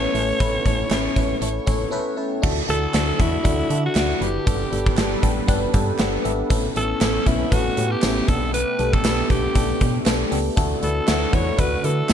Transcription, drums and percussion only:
0.15 open hi-hat medium
0.40 kick loud
0.40 closed hi-hat medium
0.66 kick medium
0.66 closed hi-hat medium
0.91 snare loud
0.91 clap medium
0.91 closed hi-hat medium
1.16 kick medium
1.16 closed hi-hat medium
1.42 closed hi-hat medium
1.67 kick medium
1.67 closed hi-hat medium
2.43 kick loud
2.43 crash loud
2.69 closed hi-hat medium
2.94 snare loud
2.94 clap medium
2.94 closed hi-hat medium
3.20 kick medium
3.20 closed hi-hat medium
3.45 kick medium
3.45 closed hi-hat medium
3.70 closed hi-hat medium
3.95 snare loud
3.95 clap medium
3.95 closed hi-hat loud
4.22 closed hi-hat medium
4.47 kick loud
4.47 closed hi-hat loud
4.73 closed hi-hat medium
4.86 kick medium
4.97 snare loud
4.97 clap medium
4.97 closed hi-hat medium
5.23 kick medium
5.23 closed hi-hat medium
5.48 kick loud
5.48 closed hi-hat medium
5.74 kick medium
5.74 closed hi-hat medium
5.99 snare loud
5.99 clap medium
5.99 closed hi-hat loud
6.25 closed hi-hat medium
6.50 kick loud
6.50 closed hi-hat medium
6.76 closed hi-hat medium
7.01 snare loud
7.01 clap medium
7.01 closed hi-hat medium
7.01 tambourine medium
7.26 kick medium
7.26 closed hi-hat medium
7.52 kick medium
7.52 closed hi-hat medium
7.77 closed hi-hat medium
8.02 snare loud
8.02 clap medium
8.02 closed hi-hat loud
8.02 tambourine medium
8.28 kick loud
8.28 closed hi-hat medium
8.54 closed hi-hat loud
8.79 closed hi-hat medium
8.93 kick medium
9.04 snare loud
9.04 clap medium
9.04 closed hi-hat medium
9.04 tambourine medium
9.30 kick medium
9.30 closed hi-hat medium
9.55 kick loud
9.55 closed hi-hat medium
9.81 kick medium
9.81 closed hi-hat medium
10.06 snare loud
10.06 clap medium
10.06 closed hi-hat loud
10.06 tambourine medium
10.32 open hi-hat medium
10.57 kick loud
10.57 closed hi-hat loud
10.83 closed hi-hat medium
11.08 snare loud
11.08 clap medium
11.08 closed hi-hat medium
11.08 tambourine medium
11.33 kick medium
11.33 closed hi-hat medium
11.58 kick loud
11.58 closed hi-hat medium
11.84 closed hi-hat medium
12.09 snare loud
12.09 clap medium
12.09 closed hi-hat loud
12.09 tambourine medium

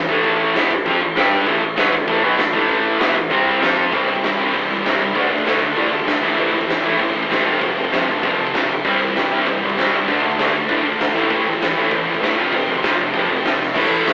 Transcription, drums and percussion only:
0.09 kick loud
0.24 kick loud
0.24 crash medium
0.55 snare loud
0.55 crash medium
0.71 kick medium
0.86 kick loud
0.86 crash medium
1.16 snare loud
1.16 crash medium
1.31 kick loud
1.47 kick loud
1.47 crash medium
1.77 snare loud
1.77 crash medium
1.93 kick loud
2.08 kick loud
2.08 crash medium
2.38 snare loud
2.38 crash medium
2.53 kick medium
2.69 kick loud
2.69 crash medium
3.00 snare loud
3.00 crash medium
3.16 kick loud
3.31 kick loud
3.31 crash medium
3.62 snare loud
3.62 crash medium
3.77 kick loud
3.92 kick loud
3.92 crash medium
4.08 crash medium
4.16 kick medium
4.23 snare loud
4.23 crash medium
4.39 crash medium
4.54 kick loud
4.54 crash medium
4.70 crash medium
4.77 kick medium
4.85 snare loud
4.85 crash medium
5.00 crash medium
5.15 kick loud
5.15 crash medium
5.32 crash medium
5.38 kick medium
5.46 snare loud
5.46 crash medium
5.61 crash medium
5.76 kick loud
5.76 crash medium
5.92 crash medium
6.00 kick medium
6.07 snare loud
6.07 crash medium
6.23 crash medium
6.38 kick loud
6.38 crash medium
6.54 crash medium
6.61 kick medium
6.69 snare loud
6.69 crash medium
6.84 crash medium
6.99 kick loud
6.99 crash medium
7.15 crash medium
7.23 kick medium
7.31 snare loud
7.31 crash medium
7.45 crash medium
7.61 kick loud
7.61 crash medium
7.77 crash medium
7.85 kick medium
7.93 snare loud
7.93 crash medium
8.08 crash medium
8.23 kick loud
8.23 crash medium
8.39 crash medium
8.47 kick loud
8.54 snare loud
8.54 crash medium
8.69 crash medium
8.85 kick loud
8.85 crash medium
9.00 crash medium
9.08 kick medium
9.16 snare loud
9.16 crash medium
9.31 crash medium
9.46 kick loud
9.46 crash medium
9.62 crash medium
9.70 kick medium
9.78 snare loud
9.78 crash medium
9.93 crash medium
10.08 kick loud
10.08 crash medium
10.24 crash medium
10.31 kick medium
10.38 snare loud
10.38 crash medium
10.54 crash medium
10.68 kick loud
10.68 crash medium
10.84 crash medium
10.92 kick medium
11.00 snare loud
11.00 crash medium
11.15 crash medium
11.30 kick loud
11.30 crash medium
11.45 crash medium
11.53 kick medium
11.61 snare loud
11.61 crash medium
11.76 crash medium
11.91 kick loud
11.91 crash medium
12.07 crash medium
12.14 kick medium
12.23 snare loud
12.23 crash medium
12.38 crash medium
12.53 kick loud
12.53 crash medium
12.69 crash medium
12.76 kick medium
12.83 snare loud
12.83 crash medium
12.99 crash medium
13.14 kick loud
13.14 crash medium
13.29 crash medium
13.37 kick medium
13.45 snare loud
13.45 crash medium
13.63 snare medium
13.76 kick loud
13.76 crash loud
13.76 crash medium
14.07 snare loud
14.07 crash medium

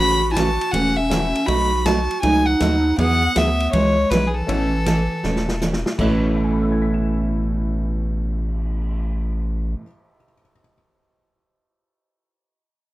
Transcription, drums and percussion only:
0.36 kick soft
0.36 snare medium
0.36 hi-hat pedal medium
0.36 ride medium
0.61 ride medium
0.73 kick soft
0.73 ride medium
1.11 kick soft
1.11 snare medium
1.11 hi-hat pedal medium
1.11 ride medium
1.35 ride soft
1.48 kick soft
1.48 ride medium
1.86 kick soft
1.86 snare medium
1.86 hi-hat pedal medium
1.86 ride medium
2.11 ride soft
2.23 kick soft
2.23 ride medium
2.60 kick soft
2.60 snare medium
2.60 hi-hat pedal soft
2.60 ride medium
2.98 kick soft
2.98 ride medium
3.36 kick soft
3.36 snare medium
3.36 hi-hat pedal medium
3.36 ride medium
3.60 ride soft
3.73 kick soft
3.73 ride medium
4.11 kick soft
4.11 snare medium
4.11 hi-hat pedal medium
4.11 ride medium
4.49 kick soft
4.49 ride medium
4.86 kick soft
4.86 snare medium
4.86 hi-hat pedal medium
4.86 ride medium
5.24 snare medium
5.36 snare medium
5.49 snare medium
5.61 snare medium
5.61 hi-hat pedal medium
5.73 snare medium
5.86 snare medium
5.99 kick medium
5.99 crash medium
6.24 cymbal swell soft

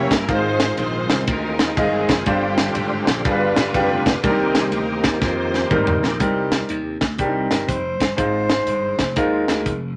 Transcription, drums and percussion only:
0.11 kick medium
0.11 snare loud
0.11 ride medium
0.29 kick loud
0.29 ride medium
0.60 snare loud
0.60 ride medium
0.77 ride medium
1.10 snare loud
1.10 ride soft
1.27 kick loud
1.27 ride medium
1.59 snare loud
1.59 ride medium
1.77 kick loud
1.77 ride medium
2.09 kick medium
2.09 snare loud
2.09 ride medium
2.26 kick loud
2.26 ride medium
2.58 snare loud
2.58 ride medium
2.75 ride medium
3.07 snare loud
3.07 ride soft
3.25 kick loud
3.25 ride medium
3.56 snare loud
3.56 ride medium
3.74 kick medium
3.74 ride medium
4.06 kick medium
4.06 snare loud
4.06 ride medium
4.24 kick loud
4.24 ride medium
4.55 snare loud
4.55 ride medium
4.72 ride medium
5.04 kick medium
5.04 snare loud
5.04 ride soft
5.22 kick loud
5.22 snare medium
5.54 snare medium
5.71 kick loud
5.71 mid tom medium
5.87 floor tom loud
6.04 snare medium
6.20 kick loud
6.20 closed hi-hat medium
6.52 snare loud
6.52 closed hi-hat medium
6.69 closed hi-hat medium
7.01 kick medium
7.01 snare medium
7.01 closed hi-hat soft
7.19 kick medium
7.19 closed hi-hat medium
7.51 snare loud
7.51 closed hi-hat medium
7.69 kick loud
7.69 closed hi-hat medium
8.00 kick medium
8.00 snare loud
8.00 closed hi-hat medium
8.18 kick loud
8.18 closed hi-hat medium
8.50 snare loud
8.50 closed hi-hat medium
8.67 closed hi-hat medium
8.99 kick medium
8.99 snare loud
8.99 closed hi-hat soft
9.16 kick loud
9.16 closed hi-hat medium
9.48 snare loud
9.48 closed hi-hat medium
9.66 kick medium
9.66 closed hi-hat medium

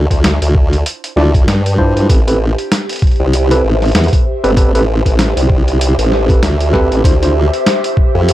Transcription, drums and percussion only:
0.11 kick medium
0.11 closed hi-hat soft
0.24 snare loud
0.24 closed hi-hat medium
0.42 closed hi-hat medium
0.55 kick loud
0.73 closed hi-hat soft
0.86 closed hi-hat medium
1.04 closed hi-hat medium
1.17 snare soft
1.34 kick loud
1.34 closed hi-hat soft
1.48 snare loud
1.48 closed hi-hat medium
1.66 closed hi-hat medium
1.78 kick medium
1.97 closed hi-hat soft
2.09 kick loud
2.09 closed hi-hat medium
2.28 closed hi-hat soft
2.58 closed hi-hat soft
2.72 snare loud
2.72 closed hi-hat medium
2.89 closed hi-hat soft
2.93 closed hi-hat soft
2.96 closed hi-hat soft
2.99 kick loud
2.99 closed hi-hat soft
3.02 closed hi-hat soft
3.07 closed hi-hat soft
3.11 closed hi-hat soft
3.16 closed hi-hat soft
3.33 closed hi-hat medium
3.51 closed hi-hat medium
3.82 snare soft
3.82 closed hi-hat soft
3.85 closed hi-hat soft
3.88 closed hi-hat soft
3.92 snare loud
3.92 closed hi-hat soft
3.95 closed hi-hat medium
3.99 closed hi-hat soft
4.04 closed hi-hat soft
4.08 closed hi-hat soft
4.13 kick loud
4.13 closed hi-hat soft
4.44 closed hi-hat soft
4.57 kick loud
4.57 closed hi-hat medium
4.75 closed hi-hat soft
5.06 kick medium
5.06 closed hi-hat soft
5.19 snare loud
5.19 closed hi-hat medium
5.37 closed hi-hat soft
5.50 kick loud
5.68 closed hi-hat soft
5.81 closed hi-hat medium
5.99 closed hi-hat medium
6.12 snare soft
6.29 kick loud
6.29 closed hi-hat soft
6.43 snare loud
6.43 closed hi-hat medium
6.61 closed hi-hat soft
6.73 kick medium
6.73 snare medium
6.92 closed hi-hat soft
7.04 kick loud
7.04 closed hi-hat medium
7.23 closed hi-hat soft
7.53 closed hi-hat soft
7.66 snare loud
7.66 closed hi-hat medium
7.84 closed hi-hat medium
7.97 kick medium
8.29 closed hi-hat medium

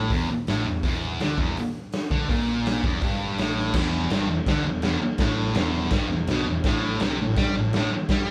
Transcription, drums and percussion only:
0.10 kick loud
0.10 open hi-hat medium
0.47 snare loud
0.47 open hi-hat medium
0.83 kick loud
0.83 open hi-hat medium
1.20 snare loud
1.20 open hi-hat medium
1.38 kick loud
1.57 open hi-hat medium
1.92 snare loud
1.92 open hi-hat soft
2.11 kick loud
2.29 kick medium
2.29 open hi-hat soft
2.66 snare loud
2.66 open hi-hat medium
2.84 kick loud
3.02 kick loud
3.02 open hi-hat medium
3.38 snare loud
3.38 open hi-hat medium
3.57 snare medium
3.74 kick loud
3.74 snare loud
3.74 crash loud
3.74 crash medium
4.10 snare loud
4.10 crash medium
4.47 kick loud
4.47 snare loud
4.47 crash medium
4.82 snare loud
4.82 crash medium
5.18 kick loud
5.18 snare loud
5.18 crash medium
5.55 snare loud
5.55 crash medium
5.91 kick loud
5.91 snare loud
5.91 crash medium
6.27 snare loud
6.27 crash medium
6.64 kick loud
6.64 snare loud
6.64 crash medium
7.00 snare loud
7.00 crash medium
7.36 kick loud
7.36 snare loud
7.36 crash medium
7.73 snare loud
7.73 crash medium
8.09 kick loud
8.09 snare loud
8.09 crash medium

